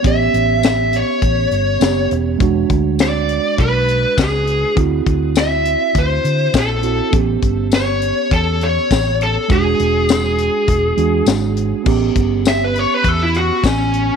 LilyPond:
<<
  \new Staff \with { instrumentName = "Lead electric guitar" } { \time 4/4 \key a \mixolydian \tempo 4 = 102 e''4 e''8 cis''2 r8 | r4 d''4 b'4 gis'4 | r4 e''4 c''4 a'4 | r4 cis''4 a'8 cis''4 a'8 |
gis'2. r4 | r4 e''16 b'16 cis''16 b'16 a'16 e'16 fis'8 cis'4 | }
  \new Staff \with { instrumentName = "Tine electric piano" } { \time 4/4 \key a \mixolydian <b cis' g'>2. <b cis' g'>4 | <gis d' fis'>1 | <c' e' fis'>2.~ <c' e' fis'>8 <c' e' fis'>8 | <b cis' g'>1 |
<gis d' fis'>2~ <gis d' fis'>8 <gis d' fis'>4. | <b cis' g'>1 | }
  \new Staff \with { instrumentName = "Fingered electric bass" } { \clef bass \time 4/4 \key a \mixolydian a,,8 a,,4. a,,8 g,,8 fis,,8 e,,8 | e,,8 d,4. b,,4 cis,4 | d,8 d,4. d,8 d8 bes,,4 | a,,8 g,,4. e,4 a,,4 |
e,,8 e,,4. e,,8 e,8 gis,,4 | a,,8 g,,4. e,4 a,,4 | }
  \new DrumStaff \with { instrumentName = "Drums" } \drummode { \time 4/4 <hh bd>8 hh8 <hh sn tamb>8 hh8 <hh bd>8 hh8 <hh sn tamb>8 hh8 | <hh bd>8 <hh bd>8 <hh sn tamb>8 hh8 <hh bd>8 hh8 <hh bd sn tamb>8 hh8 | <hh bd>8 <hh bd>8 <hh sn tamb>8 hh8 <hh bd>8 hh8 <hh bd sn tamb>8 hh8 | <hh bd>8 <hh bd>8 <hh sn tamb>8 hh8 <hh bd>8 hh8 <hh bd sn tamb>8 hh8 |
<hh bd>8 hh8 <hh sn tamb>8 hh8 <hh bd>8 hh8 <hh sn tamb>8 hh8 | <cymc bd>8 <hh bd>8 <hh sn tamb>8 hh8 <hh bd>8 hh8 <hh bd sn tamb>8 hh8 | }
>>